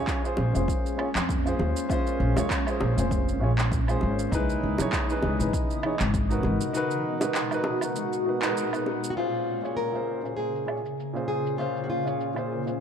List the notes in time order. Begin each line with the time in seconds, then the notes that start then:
Already playing: G#3 A#3 C#4 F4 G#4 C#5
0.07 kick, clap, shaker
0.23 C#4 F4 G#4 C5, shaker
0.37 A#1, high bongo
0.53 F1 C#4 F4 G#4 C5, shaker
0.68 kick, shaker
0.86 shaker
0.97 C#4 F4 G#4 C#5, low woodblock
1.15 F2, clap, shaker
1.29 kick, shaker
1.45 C#4 F4 G#4 C5, shaker
1.59 D#2, high bongo
1.77 shaker
1.89 C#4 F4 G#4 C5, kick, shaker
2.07 shaker
2.20 A#1
2.36 D#2 C#4 F4 G#4 C#5, high bongo, shaker
2.50 kick, clap, shaker
2.66 C#4 F4 G#4 C5, low woodblock, shaker
2.80 A#1, high bongo
2.96 F1 C#4 F4 G#4 C5, shaker
3.11 kick, shaker
3.29 shaker
3.40 A#1 C#4 F4 G#4 C#5
3.58 clap, shaker
3.72 kick, shaker
3.87 C#4 F4 G#4 C5, low woodblock, shaker
4.01 G#1, high bongo
4.19 shaker
4.31 C#2 B2 C#3 E3 D#4 E4 G#4 B4 D#5, kick, shaker
4.50 shaker
4.63 C#2
4.78 F#2 D#4 E4 G#4 C#5, high bongo, shaker
4.92 kick, clap, shaker
5.09 D#4 E4 G#4 B4, shaker
5.22 C#2, high bongo
5.38 G#1 D#4 E4 G#4 B4, shaker
5.53 kick, shaker
5.70 shaker
5.83 D#4 E4 G#4 C#5, low woodblock
6.00 G#1, clap, shaker
6.14 kick, shaker
6.29 D#4 F#4 A#4 B4, shaker
6.43 G#1 A#2 G#3 F#4, high bongo
6.61 shaker
6.73 D#4 F#4 A#4 B4, shaker
6.91 shaker
7.20 D#4 F#4 A#4 B4, high bongo, shaker
7.35 clap, shaker
7.51 D#4 F#4 A#4 B4, low woodblock, shaker
7.64 high bongo
7.81 D#4 F#4 A#4 B4, low woodblock, shaker
7.96 shaker
8.13 shaker
8.26 D#4 F#4 A#4 B4
8.42 D#4 F#4 A#4 B4, clap, shaker
8.57 shaker
8.72 D#4 F#4 A#4 B4, low woodblock, shaker
8.86 high bongo
9.04 shaker
9.10 F#4
9.16 A#2 C#3 A#3 C#4 F4 G#4 C5, crash, shaker
9.34 shaker
9.62 A#2 C#4 F4 G#4 C#5, shaker
9.77 A#4, shaker
9.92 A#2 C#4 F4 G#4 C5, shaker
10.22 A#2 C#4 F4 G#4 C5, shaker
10.37 G#4, shaker
10.55 shaker
10.66 A#2 C#4 F4 G#4 C#5, low woodblock
10.86 shaker
11.00 shaker
11.13 A#2 C#4 F4 G#4 C5, shaker
11.28 G#4
11.46 shaker
11.58 A#2 C#4 F4 G#4 C5, shaker
11.77 shaker
11.84 F#4
11.90 F4
12.04 A#2 C#4 F4 G#4 C#5, shaker
12.21 shaker
12.34 A#2 C#4 F4 G#4 C5, low woodblock, shaker
12.65 A#2 C#4 F4 G#4 C5, shaker